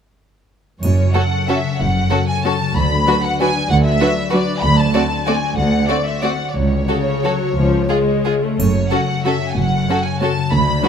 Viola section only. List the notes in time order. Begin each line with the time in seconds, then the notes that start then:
1.16 F#3 C#4
1.49 F#3 C#4
2.10 F#3 C#4
2.45 F#3 C#4
3.07 F#3 D4
3.40 F#3 D4
4.01 F#3 D4
4.33 F#3 D4
4.95 A3 C4
5.28 A3 C4
5.90 A3 C4
6.23 A3 C4
6.89 C#3
7.25 F#3
7.57 F3
7.91 G#3
8.43 A3
8.92 F#3 C#4
9.26 F#3 C#4
9.89 F#3 C#4
10.21 F#3 C#4
10.83 F#3 D4